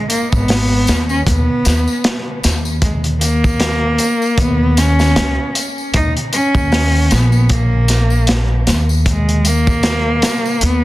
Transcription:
0.10 0.31 A#3 medium
0.10 closed hi-hat medium
0.10 tambourine medium
0.32 0.85 G#1 medium
0.32 1.06 B3 loud
0.32 kick medium
0.32 tambourine medium
0.48 snare loud
0.48 open hi-hat medium
0.48 tambourine soft
0.87 1.26 D#2 medium
0.87 snare soft
0.87 closed hi-hat medium
0.87 tambourine medium
1.09 1.26 C#4 medium
1.09 tambourine soft
1.27 1.46 D#2 medium
1.27 2.40 B3 medium
1.27 kick loud
1.27 closed hi-hat medium
1.27 tambourine soft
1.65 1.86 D#2 medium
1.65 snare soft
1.65 closed hi-hat medium
1.65 tambourine medium
1.88 tambourine soft
2.04 snare loud
2.04 closed hi-hat medium
2.04 tambourine soft
2.43 3.97 D#2 medium
2.43 snare soft
2.43 closed hi-hat medium
2.43 tambourine medium
2.65 tambourine medium
2.82 3.01 G#3 medium
2.82 kick loud
2.82 closed hi-hat medium
2.82 tambourine soft
3.04 closed hi-hat soft
3.21 4.41 A#3 medium
3.21 closed hi-hat medium
3.21 tambourine medium
3.44 kick medium
3.44 tambourine soft
3.60 snare loud
3.60 closed hi-hat medium
3.60 tambourine soft
3.98 closed hi-hat medium
3.98 tambourine medium
4.22 tambourine medium
4.38 5.13 D#2 medium
4.38 4.80 B3 loud
4.38 kick loud
4.38 closed hi-hat medium
4.38 tambourine soft
4.77 5.56 C#4 loud
4.77 snare soft
4.77 closed hi-hat medium
4.77 tambourine loud
4.99 snare soft
4.99 tambourine medium
5.16 5.36 C#2 medium
5.16 snare medium
5.16 closed hi-hat medium
5.16 tambourine soft
5.55 closed hi-hat medium
5.55 tambourine medium
5.78 tambourine soft
5.94 6.14 D#2 medium
5.94 6.13 D#4 loud
5.94 kick loud
5.94 closed hi-hat medium
5.94 tambourine soft
6.17 closed hi-hat soft
6.33 7.14 C#4 loud
6.33 closed hi-hat medium
6.33 tambourine medium
6.55 7.08 D#2 medium
6.55 kick medium
6.55 tambourine soft
6.72 snare loud
6.72 open hi-hat medium
6.72 tambourine soft
7.11 8.64 A#1 loud
7.11 7.53 B3 medium
7.11 snare soft
7.11 closed hi-hat medium
7.11 tambourine medium
7.32 tambourine soft
7.49 8.68 A#3 medium
7.49 kick loud
7.49 closed hi-hat medium
7.49 tambourine soft
7.88 snare soft
7.88 closed hi-hat medium
7.88 tambourine medium
8.10 tambourine soft
8.27 snare loud
8.27 closed hi-hat medium
8.27 tambourine soft
8.67 10.20 D#2 medium
8.67 snare soft
8.67 closed hi-hat medium
8.67 tambourine medium
8.89 tambourine soft
9.06 9.49 G#3 medium
9.06 kick loud
9.06 closed hi-hat medium
9.06 tambourine soft
9.29 closed hi-hat soft
9.45 10.66 A#3 medium
9.45 closed hi-hat medium
9.45 tambourine medium
9.67 kick medium
9.67 tambourine soft
9.83 snare loud
9.83 closed hi-hat medium
9.83 tambourine soft
10.22 snare medium
10.22 closed hi-hat medium
10.22 tambourine medium
10.45 tambourine soft
10.61 10.84 D#2 loud
10.61 10.84 B3 loud
10.61 closed hi-hat medium
10.61 tambourine soft

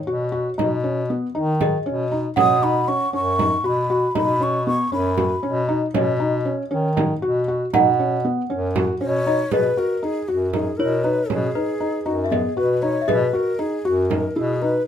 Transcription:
0.00 1.58 C#5 medium
0.07 0.49 B2 medium
0.07 0.23 F#4 medium
0.07 frame drum soft
0.32 0.49 F#4 medium
0.58 1.22 B2 medium
0.58 0.74 D#4 medium
0.58 frame drum medium
0.84 1.00 C#4 medium
1.10 1.26 B3 medium
1.10 frame drum soft
1.35 1.77 D#3 medium
1.35 1.51 D#4 medium
1.61 1.77 G#4 medium
1.61 2.09 D#5 medium
1.61 frame drum medium
1.86 2.28 B2 medium
1.86 2.02 C#4 medium
2.12 2.28 D#4 medium
2.12 frame drum soft
2.36 3.01 B2 medium
2.36 2.54 C#4 medium
2.36 6.05 F#5 medium
2.36 2.65 D#6 medium
2.36 frame drum medium
2.62 2.79 D#4 medium
2.62 2.90 B5 medium
2.88 3.04 C#4 medium
2.88 3.14 C#6 medium
3.13 3.56 F#2 medium
3.13 3.30 C#4 medium
3.13 3.67 C#6 medium
3.39 3.55 D#4 medium
3.39 frame drum medium
3.64 4.07 B2 medium
3.64 3.81 F#4 medium
3.64 4.17 B5 medium
3.64 frame drum soft
3.90 4.06 F#4 medium
4.15 4.79 B2 medium
4.15 4.32 D#4 medium
4.15 4.44 B5 medium
4.15 frame drum medium
4.40 4.57 C#4 medium
4.40 4.67 C#6 medium
4.67 4.83 B3 medium
4.67 4.91 C#6 medium
4.92 5.35 F#2 medium
4.92 5.09 C#4 medium
4.92 5.66 B5 medium
5.17 5.34 F#4 medium
5.17 frame drum medium
5.43 5.86 B2 medium
5.43 5.59 C#4 medium
5.43 frame drum soft
5.68 5.85 D#4 medium
5.94 6.58 B2 medium
5.94 6.11 C#4 medium
5.94 7.70 D#5 medium
5.94 frame drum medium
6.20 6.36 D#4 medium
6.45 6.62 C#4 medium
6.71 7.14 D#3 medium
6.71 6.87 C#4 medium
6.96 7.13 D#4 medium
6.96 frame drum medium
7.22 7.65 B2 medium
7.22 7.39 F#4 medium
7.22 frame drum soft
7.48 7.64 F#4 medium
7.73 8.37 B2 medium
7.73 7.90 D#4 medium
7.73 9.32 F#5 medium
7.73 frame drum medium
7.99 8.16 C#4 medium
8.25 8.41 B3 medium
8.50 8.93 F#2 medium
8.50 8.66 C#4 medium
8.76 8.92 F#4 medium
8.76 frame drum medium
9.01 9.44 B2 medium
9.01 9.17 C#4 medium
9.01 9.53 C#5 medium
9.26 9.43 D#4 medium
9.26 9.39 D#5 medium
9.51 9.74 B2 medium
9.51 9.68 G#4 medium
9.51 9.80 B4 medium
9.51 10.84 D#5 medium
9.51 frame drum medium
9.77 9.94 F#4 medium
9.77 10.06 A#4 medium
10.03 10.19 D#4 medium
10.03 10.30 G#4 medium
10.28 10.71 F#2 medium
10.28 10.53 F#4 medium
10.28 10.45 F#4 medium
10.53 10.70 D#4 medium
10.53 10.79 G#4 medium
10.53 frame drum medium
10.77 11.21 B2 medium
10.77 10.96 E4 medium
10.77 11.05 A#4 medium
10.77 11.59 C#5 medium
11.04 11.21 D#4 medium
11.04 11.30 B4 medium
11.29 11.51 B2 medium
11.29 11.46 C#4 medium
11.29 12.07 G#4 medium
11.29 frame drum medium
11.55 11.72 D#4 medium
11.55 12.27 B4 medium
11.80 11.97 D#4 medium
12.06 12.49 F#2 medium
12.06 12.22 D#4 medium
12.06 12.32 F#4 medium
12.24 12.32 E5 medium
12.31 12.48 B3 medium
12.31 12.57 G#4 medium
12.31 13.04 D#5 medium
12.31 frame drum soft
12.57 13.00 B2 medium
12.57 12.73 F#4 medium
12.57 12.84 B4 medium
12.82 12.99 D#4 medium
12.82 13.10 C#5 medium
13.01 13.09 E5 medium
13.08 13.30 B2 medium
13.08 13.24 G#4 medium
13.08 13.37 B4 medium
13.08 14.87 D#5 medium
13.08 frame drum medium
13.33 13.50 F#4 medium
13.33 13.61 A#4 medium
13.59 13.75 D#4 medium
13.59 13.87 G#4 medium
13.85 14.27 F#2 medium
13.85 14.01 F#4 medium
13.85 14.12 F#4 medium
14.10 14.27 D#4 medium
14.10 14.38 A#4 medium
14.10 frame drum medium
14.36 14.78 B2 medium
14.36 14.52 E4 medium
14.36 14.63 G#4 medium
14.62 14.78 D#4 medium
14.62 14.86 B4 medium

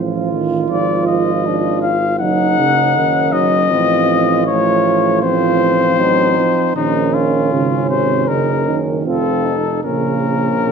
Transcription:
0.00 0.67 A1 soft
0.00 0.32 F3 soft
0.00 1.43 F4 soft
0.00 1.48 F4 soft
0.33 0.71 D#3 soft
0.69 2.23 G#1 soft
0.69 1.94 F3 soft
0.69 1.05 D5 medium
1.07 1.81 D#5 soft
1.45 1.95 D4 soft
1.45 2.23 F4 soft
1.82 2.19 F5 medium
2.20 2.96 F#1 soft
2.20 2.60 F#3 soft
2.20 2.71 D#4 soft
2.20 3.68 D#4 soft
2.20 3.34 F#5 medium
2.59 2.98 C#3 soft
2.97 3.73 F#1 soft
2.97 3.35 D#3 soft
2.97 3.73 C#4 soft
3.33 3.70 F#3 soft
3.33 4.46 D#5 medium
3.71 6.48 A1 soft
3.71 4.45 F3 soft
3.71 4.47 C4 soft
3.71 4.46 F4 soft
4.46 5.21 F3 soft
4.46 5.25 A3 soft
4.46 5.22 F4 soft
4.46 5.21 C#5 medium
5.22 6.00 F3 soft
5.22 6.76 C4 soft
5.22 6.01 F4 soft
5.22 6.73 C5 medium
5.98 6.39 F#3 soft
5.98 6.76 D#4 soft
6.37 6.75 F3 soft
6.75 7.54 A#1 soft
6.75 7.54 D#3 soft
6.75 9.02 C#4 soft
6.75 8.32 C#4 soft
6.75 7.15 D#4 medium
7.14 7.89 F4 medium
7.52 8.31 G#1 soft
7.52 7.92 C#3 soft
7.89 8.31 C3 soft
7.89 8.30 C5 medium
8.28 9.08 F#1 soft
8.28 8.69 C#3 soft
8.28 8.80 D#4 soft
8.28 8.79 A#4 medium
8.68 9.08 D#3 soft
9.06 9.85 F1 soft
9.06 9.57 F3 soft
9.06 9.56 C4 soft
9.06 9.47 F4 soft
9.06 9.81 A4 medium
9.46 9.87 D#4 soft
9.83 10.72 A#1 soft
9.83 10.52 C#3 soft
9.83 10.72 A#3 soft
9.83 10.72 C#4 soft
9.83 10.72 A#4 medium
10.64 10.72 C3 soft

